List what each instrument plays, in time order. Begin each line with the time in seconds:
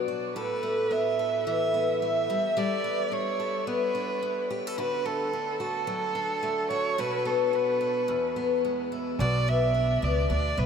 Already playing: steel-string acoustic guitar B2 F#3 B3 D4
0.08 steel-string acoustic guitar F#4
0.35 steel-string acoustic guitar A2 A4, violin B4
0.63 steel-string acoustic guitar A3
0.91 steel-string acoustic guitar B3, violin E5
1.19 steel-string acoustic guitar A4
1.47 steel-string acoustic guitar E3, violin E5
1.74 steel-string acoustic guitar B3
2.02 steel-string acoustic guitar A3, violin E5
2.30 steel-string acoustic guitar G3
2.57 steel-string acoustic guitar G3 A4, violin D5
2.84 steel-string acoustic guitar B3
3.12 steel-string acoustic guitar D4, violin C#5
3.40 steel-string acoustic guitar A4
3.67 steel-string acoustic guitar B3, violin B4
3.95 steel-string acoustic guitar D4
4.23 steel-string acoustic guitar B3
4.51 steel-string acoustic guitar G4
4.67 steel-string acoustic guitar A4
4.78 steel-string acoustic guitar D3 F#4, violin B4
5.06 steel-string acoustic guitar A3, violin A4
5.33 steel-string acoustic guitar D4
5.60 steel-string acoustic guitar F#4, violin A4
5.87 steel-string acoustic guitar F#3
6.15 steel-string acoustic guitar D4
6.43 steel-string acoustic guitar A3
6.70 steel-string acoustic guitar F#4, violin C#5
6.98 steel-string acoustic guitar B2 F#4, violin B4
7.25 steel-string acoustic guitar B3, violin A4
7.53 steel-string acoustic guitar D4, violin B4
7.81 steel-string acoustic guitar F#4
8.08 steel-string acoustic guitar E2
8.36 steel-string acoustic guitar B3
8.65 steel-string acoustic guitar G#3
8.92 steel-string acoustic guitar E4
9.19 upright bass B1, steel-string acoustic guitar B2 F#4, violin D5
9.48 steel-string acoustic guitar B3, violin E5
9.75 steel-string acoustic guitar D4
10.02 upright bass C#2, steel-string acoustic guitar B3, violin D5
10.30 upright bass D2, steel-string acoustic guitar D4, violin D5
10.57 upright bass B1, steel-string acoustic guitar B3, violin B4